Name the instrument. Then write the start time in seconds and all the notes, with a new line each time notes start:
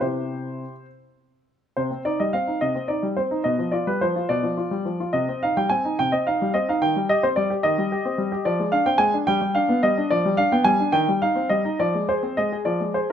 grand piano
0.01 C3 E4 G4 C5
1.77 C3 C5
1.91 C4
2.05 D#4 D5
2.20 G3 D#5
2.33 C4 F5
2.47 D#4
2.61 C3 D#5
2.75 C4
2.88 D#4 D5
3.03 G3
3.17 C4 C5
3.31 D#4
3.44 B2 D#5
3.59 F3
3.72 F4 D5
3.87 G3 B4
4.01 F3 C5
4.16 F4
4.29 B2 D5
4.43 F3
4.57 F4
4.71 G3
4.85 F3
5.00 F4
5.13 C3 D#5
5.29 C4
5.43 D#4 F5
5.57 G3 G5
5.69 C4 G#5
5.85 D#4
5.99 C3 G5
6.12 C4 D#5
6.27 D#4 F5
6.42 G3
6.54 C4 D#5
6.69 D#4 F5
6.82 D#3 G5
6.96 G3
7.09 G4 D#5
7.23 C4 C5
7.36 G3 D5
7.50 G4
7.63 D#3 D#5
7.78 G3
7.92 G4
8.05 C4
8.18 G3
8.32 G4
8.45 F3 D5
8.59 G#3
8.72 D4 F5
8.86 C4 G5
8.98 G#3 G#5
9.14 D4
9.27 G3 G5
9.41 G3
9.55 D4 F5
9.69 B3
9.83 G3 D#5
9.97 D4
10.11 F3 D5
10.25 G3
10.37 D4 F5
10.52 B3 G5
10.64 G3 G#5
10.80 D4
10.92 D#3 G5
11.09 G3
11.22 D#4 F5
11.35 C4
11.49 G3 D#5
11.65 D#4
11.80 F3 D5
11.95 G#3
12.09 G#4 C5
12.23 C4
12.37 G#3 D#5
12.52 G#4
12.65 F3 D5
12.80 G#3
12.94 G#4 C5